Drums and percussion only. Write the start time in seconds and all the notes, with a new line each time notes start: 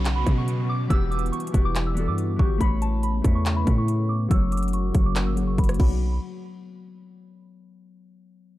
0.05 clap, closed hi-hat
0.27 kick, closed hi-hat
0.48 closed hi-hat
0.90 kick, closed hi-hat
1.12 closed hi-hat
1.19 closed hi-hat
1.26 closed hi-hat
1.33 closed hi-hat
1.40 closed hi-hat
1.47 closed hi-hat
1.54 kick, closed hi-hat
1.75 clap, closed hi-hat
1.97 closed hi-hat
2.18 closed hi-hat
2.39 kick
2.61 kick, closed hi-hat
2.82 closed hi-hat
3.03 closed hi-hat
3.24 kick, closed hi-hat
3.46 clap, closed hi-hat
3.67 kick, closed hi-hat
3.88 closed hi-hat
4.31 kick, closed hi-hat
4.52 closed hi-hat
4.57 closed hi-hat
4.63 closed hi-hat
4.68 closed hi-hat
4.73 closed hi-hat
4.94 kick, closed hi-hat
5.16 clap, closed hi-hat
5.37 closed hi-hat
5.58 kick, closed hi-hat
5.64 closed hi-hat
5.69 cross-stick, closed hi-hat
5.74 closed hi-hat
5.80 kick, crash